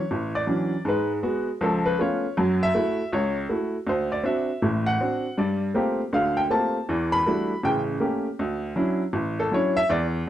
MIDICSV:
0, 0, Header, 1, 2, 480
1, 0, Start_track
1, 0, Key_signature, 2, "major"
1, 0, Tempo, 376176
1, 1088, Time_signature, 4, 2, 24, 8
1, 13134, End_track
2, 0, Start_track
2, 0, Title_t, "Upright piano"
2, 0, Program_c, 0, 0
2, 0, Note_on_c, 0, 73, 72
2, 141, Note_on_c, 0, 33, 68
2, 397, Note_off_c, 0, 73, 0
2, 450, Note_on_c, 0, 74, 82
2, 549, Note_off_c, 0, 33, 0
2, 598, Note_on_c, 0, 52, 42
2, 602, Note_on_c, 0, 54, 43
2, 605, Note_on_c, 0, 62, 49
2, 612, Note_on_c, 0, 61, 45
2, 927, Note_off_c, 0, 52, 0
2, 929, Note_off_c, 0, 54, 0
2, 931, Note_off_c, 0, 62, 0
2, 934, Note_off_c, 0, 61, 0
2, 1050, Note_off_c, 0, 74, 0
2, 1083, Note_on_c, 0, 44, 68
2, 1084, Note_on_c, 0, 56, 69
2, 1129, Note_on_c, 0, 71, 70
2, 1407, Note_off_c, 0, 71, 0
2, 1499, Note_off_c, 0, 44, 0
2, 1500, Note_off_c, 0, 56, 0
2, 1567, Note_on_c, 0, 56, 54
2, 1569, Note_on_c, 0, 59, 46
2, 1572, Note_on_c, 0, 66, 59
2, 1891, Note_off_c, 0, 56, 0
2, 1892, Note_off_c, 0, 59, 0
2, 1894, Note_off_c, 0, 66, 0
2, 2052, Note_on_c, 0, 37, 66
2, 2055, Note_on_c, 0, 53, 66
2, 2078, Note_on_c, 0, 69, 66
2, 2361, Note_off_c, 0, 69, 0
2, 2370, Note_on_c, 0, 71, 80
2, 2464, Note_off_c, 0, 37, 0
2, 2466, Note_off_c, 0, 53, 0
2, 2530, Note_off_c, 0, 71, 0
2, 2535, Note_on_c, 0, 57, 45
2, 2540, Note_on_c, 0, 59, 39
2, 2543, Note_on_c, 0, 61, 41
2, 2546, Note_on_c, 0, 65, 55
2, 2562, Note_on_c, 0, 73, 66
2, 2855, Note_off_c, 0, 57, 0
2, 2857, Note_off_c, 0, 59, 0
2, 2859, Note_off_c, 0, 61, 0
2, 2860, Note_off_c, 0, 65, 0
2, 3027, Note_on_c, 0, 42, 72
2, 3027, Note_on_c, 0, 54, 67
2, 3280, Note_off_c, 0, 73, 0
2, 3353, Note_on_c, 0, 76, 95
2, 3432, Note_off_c, 0, 42, 0
2, 3432, Note_off_c, 0, 54, 0
2, 3504, Note_on_c, 0, 57, 58
2, 3507, Note_on_c, 0, 64, 48
2, 3516, Note_on_c, 0, 66, 59
2, 3819, Note_off_c, 0, 57, 0
2, 3821, Note_off_c, 0, 64, 0
2, 3826, Note_off_c, 0, 66, 0
2, 3942, Note_off_c, 0, 76, 0
2, 3988, Note_on_c, 0, 37, 69
2, 3996, Note_on_c, 0, 73, 71
2, 4279, Note_off_c, 0, 73, 0
2, 4392, Note_off_c, 0, 37, 0
2, 4457, Note_on_c, 0, 57, 46
2, 4461, Note_on_c, 0, 64, 41
2, 4468, Note_on_c, 0, 66, 47
2, 4776, Note_off_c, 0, 57, 0
2, 4778, Note_off_c, 0, 64, 0
2, 4782, Note_off_c, 0, 66, 0
2, 4933, Note_on_c, 0, 38, 72
2, 4966, Note_on_c, 0, 72, 65
2, 5245, Note_off_c, 0, 72, 0
2, 5255, Note_on_c, 0, 74, 76
2, 5345, Note_off_c, 0, 38, 0
2, 5404, Note_on_c, 0, 60, 52
2, 5405, Note_on_c, 0, 62, 47
2, 5411, Note_on_c, 0, 66, 59
2, 5413, Note_off_c, 0, 74, 0
2, 5431, Note_on_c, 0, 76, 68
2, 5730, Note_off_c, 0, 60, 0
2, 5730, Note_off_c, 0, 62, 0
2, 5733, Note_off_c, 0, 66, 0
2, 5896, Note_on_c, 0, 45, 60
2, 5901, Note_on_c, 0, 33, 62
2, 6155, Note_off_c, 0, 76, 0
2, 6207, Note_on_c, 0, 78, 82
2, 6306, Note_off_c, 0, 45, 0
2, 6309, Note_off_c, 0, 33, 0
2, 6388, Note_on_c, 0, 60, 44
2, 6390, Note_on_c, 0, 62, 45
2, 6393, Note_on_c, 0, 66, 48
2, 6702, Note_off_c, 0, 60, 0
2, 6703, Note_off_c, 0, 62, 0
2, 6705, Note_off_c, 0, 66, 0
2, 6809, Note_off_c, 0, 78, 0
2, 6859, Note_on_c, 0, 43, 68
2, 6861, Note_on_c, 0, 55, 68
2, 6873, Note_on_c, 0, 74, 61
2, 7158, Note_off_c, 0, 74, 0
2, 7268, Note_off_c, 0, 43, 0
2, 7269, Note_off_c, 0, 55, 0
2, 7330, Note_on_c, 0, 57, 52
2, 7337, Note_on_c, 0, 58, 44
2, 7338, Note_on_c, 0, 60, 53
2, 7342, Note_on_c, 0, 65, 50
2, 7345, Note_on_c, 0, 67, 59
2, 7653, Note_off_c, 0, 57, 0
2, 7657, Note_off_c, 0, 58, 0
2, 7657, Note_off_c, 0, 60, 0
2, 7660, Note_off_c, 0, 65, 0
2, 7661, Note_off_c, 0, 67, 0
2, 7819, Note_on_c, 0, 38, 65
2, 7822, Note_on_c, 0, 50, 70
2, 7835, Note_on_c, 0, 77, 82
2, 8120, Note_off_c, 0, 77, 0
2, 8126, Note_on_c, 0, 79, 85
2, 8229, Note_off_c, 0, 38, 0
2, 8230, Note_off_c, 0, 50, 0
2, 8290, Note_off_c, 0, 79, 0
2, 8300, Note_on_c, 0, 57, 48
2, 8300, Note_on_c, 0, 60, 42
2, 8303, Note_on_c, 0, 58, 41
2, 8304, Note_on_c, 0, 67, 48
2, 8307, Note_on_c, 0, 65, 46
2, 8308, Note_on_c, 0, 81, 73
2, 8618, Note_off_c, 0, 57, 0
2, 8619, Note_off_c, 0, 60, 0
2, 8620, Note_off_c, 0, 58, 0
2, 8621, Note_off_c, 0, 67, 0
2, 8622, Note_off_c, 0, 65, 0
2, 8789, Note_on_c, 0, 40, 69
2, 8789, Note_on_c, 0, 52, 68
2, 9035, Note_off_c, 0, 81, 0
2, 9090, Note_on_c, 0, 83, 109
2, 9194, Note_off_c, 0, 40, 0
2, 9194, Note_off_c, 0, 52, 0
2, 9268, Note_on_c, 0, 55, 53
2, 9270, Note_on_c, 0, 62, 49
2, 9271, Note_on_c, 0, 57, 49
2, 9272, Note_on_c, 0, 64, 47
2, 9281, Note_on_c, 0, 66, 57
2, 9583, Note_off_c, 0, 55, 0
2, 9584, Note_off_c, 0, 57, 0
2, 9584, Note_off_c, 0, 62, 0
2, 9585, Note_off_c, 0, 64, 0
2, 9589, Note_off_c, 0, 66, 0
2, 9691, Note_off_c, 0, 83, 0
2, 9742, Note_on_c, 0, 33, 64
2, 9743, Note_on_c, 0, 49, 70
2, 9760, Note_on_c, 0, 79, 87
2, 9935, Note_off_c, 0, 79, 0
2, 10151, Note_off_c, 0, 33, 0
2, 10151, Note_off_c, 0, 49, 0
2, 10208, Note_on_c, 0, 58, 45
2, 10213, Note_on_c, 0, 57, 47
2, 10214, Note_on_c, 0, 61, 45
2, 10221, Note_on_c, 0, 67, 53
2, 10533, Note_off_c, 0, 58, 0
2, 10536, Note_off_c, 0, 57, 0
2, 10536, Note_off_c, 0, 61, 0
2, 10540, Note_off_c, 0, 67, 0
2, 10710, Note_on_c, 0, 38, 68
2, 11115, Note_off_c, 0, 38, 0
2, 11176, Note_on_c, 0, 54, 56
2, 11177, Note_on_c, 0, 61, 51
2, 11182, Note_on_c, 0, 64, 57
2, 11184, Note_on_c, 0, 62, 51
2, 11497, Note_off_c, 0, 54, 0
2, 11498, Note_off_c, 0, 61, 0
2, 11500, Note_off_c, 0, 64, 0
2, 11501, Note_off_c, 0, 62, 0
2, 11651, Note_on_c, 0, 33, 67
2, 11989, Note_on_c, 0, 69, 78
2, 12065, Note_off_c, 0, 33, 0
2, 12141, Note_on_c, 0, 54, 46
2, 12142, Note_off_c, 0, 69, 0
2, 12144, Note_on_c, 0, 61, 47
2, 12149, Note_on_c, 0, 64, 52
2, 12152, Note_on_c, 0, 62, 48
2, 12176, Note_on_c, 0, 73, 75
2, 12451, Note_off_c, 0, 73, 0
2, 12460, Note_off_c, 0, 54, 0
2, 12461, Note_off_c, 0, 61, 0
2, 12461, Note_on_c, 0, 76, 99
2, 12464, Note_off_c, 0, 64, 0
2, 12465, Note_off_c, 0, 62, 0
2, 12618, Note_off_c, 0, 76, 0
2, 12626, Note_on_c, 0, 40, 77
2, 12639, Note_on_c, 0, 74, 86
2, 12814, Note_off_c, 0, 74, 0
2, 13033, Note_off_c, 0, 40, 0
2, 13134, End_track
0, 0, End_of_file